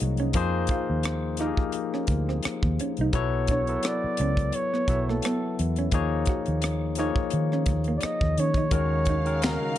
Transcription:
0.00 0.32 C2 medium
0.00 0.35 F3 medium
0.00 0.15 F#3 medium
0.00 0.35 A#3 medium
0.00 0.36 D#4 medium
0.00 0.36 G#4 medium
0.00 0.36 C5 medium
0.00 0.16 D#5 medium
0.00 muted hollow-body jazz guitar stroke soft
0.00 closed hi-hat medium
0.17 0.29 C#4 medium
0.17 closed hi-hat soft
0.33 0.66 F2 medium
0.33 1.20 F3 loud
0.33 1.20 A#3 medium
0.33 1.20 D#4 medium
0.33 1.20 G#4 medium
0.33 1.21 C5 loud
0.33 kick medium
0.33 closed hi-hat medium
0.67 kick medium
0.67 closed hi-hat medium
0.71 0.82 F4 medium
0.90 1.51 D#2 medium
1.03 cross-stick loud
1.03 closed hi-hat medium
1.37 2.52 F3 medium
1.37 2.52 A#3 medium
1.37 2.52 D#4 medium
1.37 1.51 D#4 medium
1.37 1.47 G4 medium
1.37 cross-stick soft
1.37 closed hi-hat medium
1.41 2.53 A#4 medium
1.47 2.56 G#4 medium
1.57 kick medium
1.72 closed hi-hat medium
1.94 2.03 C#4 medium
1.94 cross-stick soft
2.07 2.40 D2 medium
2.07 kick medium
2.07 closed hi-hat medium
2.12 muted hollow-body jazz guitar stroke soft
2.29 2.38 C4 medium
2.29 cross-stick soft
2.43 muted hollow-body jazz guitar stroke soft
2.43 muted fingered electric bass stroke soft
2.43 cross-stick loud
2.43 closed hi-hat medium
2.63 2.78 D#2 medium
2.63 kick medium
2.79 2.91 C#4 medium
2.79 closed hi-hat medium
2.97 3.13 C2 medium
2.97 closed hi-hat soft
3.01 3.09 D#4 medium
3.13 3.76 B1 medium
3.13 3.56 F#3 loud
3.13 3.56 B3 medium
3.13 3.56 E4 medium
3.13 3.57 A4 medium
3.13 3.57 C#5 loud
3.13 kick medium
3.13 closed hi-hat medium
3.47 3.61 D4 medium
3.47 kick medium
3.47 closed hi-hat medium
3.52 3.89 C#5 medium
3.67 4.65 F#3 medium
3.67 4.66 B3 medium
3.67 4.66 E4 medium
3.67 4.66 A4 medium
3.67 3.74 A#4 medium
3.67 closed hi-hat soft
3.76 4.70 B4 medium
3.83 cross-stick loud
3.83 closed hi-hat medium
3.87 4.57 D5 loud
4.04 muted fingered electric bass stroke soft
4.17 4.50 C#2 medium
4.17 4.31 C#4 medium
4.17 closed hi-hat medium
4.37 kick medium
4.37 closed hi-hat soft
4.52 5.11 C#5 medium
4.52 closed hi-hat medium
4.73 4.82 B3 medium
4.73 cross-stick soft
4.88 5.20 B1 medium
4.88 5.73 F#3 medium
4.88 5.73 B3 medium
4.88 5.73 E4 medium
4.88 5.74 A4 medium
4.88 5.74 E5 medium
4.88 muted hollow-body jazz guitar stroke soft
4.88 kick medium
4.88 cross-stick soft
4.88 closed hi-hat medium
5.09 5.18 A#3 medium
5.09 5.59 A4 medium
5.09 cross-stick soft
5.22 5.36 B3 medium
5.22 cross-stick loud
5.22 closed hi-hat medium
5.59 5.90 E2 medium
5.59 muted hollow-body jazz guitar stroke soft
5.59 closed hi-hat medium
5.76 5.87 C#4 medium
5.76 closed hi-hat soft
5.92 6.24 D#2 medium
5.92 6.78 F3 medium
5.92 6.78 A#3 medium
5.92 6.78 D#4 loud
5.92 6.79 G#4 medium
5.92 6.79 C#5 loud
5.92 kick medium
5.92 closed hi-hat medium
6.26 6.40 F#4 medium
6.26 kick medium
6.26 closed hi-hat medium
6.46 7.10 D#2 medium
6.46 closed hi-hat soft
6.62 cross-stick loud
6.62 closed hi-hat medium
6.95 8.10 F3 medium
6.95 8.11 A#3 medium
6.95 8.11 D#4 medium
6.95 8.11 G#4 medium
6.95 cross-stick soft
6.95 closed hi-hat medium
6.99 7.10 D#4 medium
6.99 8.11 C#5 medium
7.16 kick medium
7.30 7.69 D#3 medium
7.30 closed hi-hat medium
7.52 7.62 C#4 medium
7.52 cross-stick soft
7.66 7.98 D#2 medium
7.66 muted hollow-body jazz guitar stroke soft
7.66 kick medium
7.66 cross-stick soft
7.66 closed hi-hat medium
7.84 7.97 A#3 medium
7.84 closed hi-hat soft
7.98 8.05 D5 medium
7.98 closed hi-hat medium
8.03 8.41 D#5 loud
8.03 muted fingered electric bass stroke soft
8.03 muted hollow-body jazz guitar stroke soft
8.03 cross-stick loud
8.21 8.36 D#2 medium
8.21 kick medium
8.38 8.69 D#3 medium
8.38 8.50 C#4 medium
8.38 8.73 C#5 medium
8.38 closed hi-hat medium
8.54 8.66 D#4 medium
8.54 kick medium
8.54 closed hi-hat soft
8.71 9.56 D#2 medium
8.71 9.78 C#3 medium
8.71 9.14 D#3 medium
8.71 9.78 F#3 medium
8.71 9.14 G#3 medium
8.71 9.14 C#4 medium
8.71 9.78 D#4 medium
8.71 9.14 F#4 medium
8.71 9.15 A#4 medium
8.71 9.45 C#5 loud
8.71 9.78 F5 medium
8.71 kick loud
8.71 closed hi-hat medium
9.05 9.19 D#4 medium
9.05 kick medium
9.05 closed hi-hat medium
9.25 9.78 D#3 medium
9.25 9.78 G#3 medium
9.25 9.78 C#4 medium
9.25 9.78 F#4 medium
9.25 9.78 A#4 medium
9.25 closed hi-hat soft
9.42 9.78 A#4 medium
9.42 finger snap medium
9.42 snare loud
9.42 closed hi-hat medium

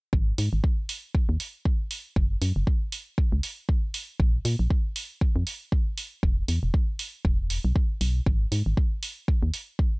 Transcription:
0.13 0.33 G#1 medium
0.13 kick loud
0.38 0.49 G#2 medium
0.38 open hi-hat loud
0.53 0.61 G#1 medium
0.64 kick loud
0.89 open hi-hat loud
1.15 kick loud
1.29 1.37 D#2 loud
1.40 open hi-hat medium
1.65 kick loud
1.91 open hi-hat medium
2.16 2.36 F#1 medium
2.16 kick loud
2.42 2.52 F#2 medium
2.42 open hi-hat loud
2.56 2.64 F#1 medium
2.67 kick loud
2.92 open hi-hat loud
3.18 kick loud
3.32 3.41 C#2 medium
3.43 open hi-hat loud
3.69 kick loud
3.94 open hi-hat loud
4.20 4.40 A#1 loud
4.20 kick loud
4.45 4.56 A#2 medium
4.45 open hi-hat loud
4.59 4.68 A#1 medium
4.70 kick loud
4.96 open hi-hat loud
5.21 kick loud
5.36 5.44 F2 loud
5.47 open hi-hat loud
5.72 kick loud
5.98 open hi-hat loud
6.23 6.43 E1 loud
6.23 kick loud
6.48 6.59 E2 medium
6.48 open hi-hat loud
6.63 6.71 E1 medium
6.74 kick loud
6.99 open hi-hat loud
7.25 7.59 E1 medium
7.25 kick loud
7.50 open hi-hat loud
7.65 7.73 B1 medium
7.76 kick loud
8.01 8.21 B1 loud
8.01 open hi-hat loud
8.26 8.46 G#1 loud
8.26 kick loud
8.52 8.63 G#2 medium
8.52 open hi-hat loud
8.66 8.74 G#1 medium
8.77 kick loud
9.03 open hi-hat loud
9.28 kick loud
9.43 9.51 D#2 loud
9.54 open hi-hat loud
9.79 kick loud

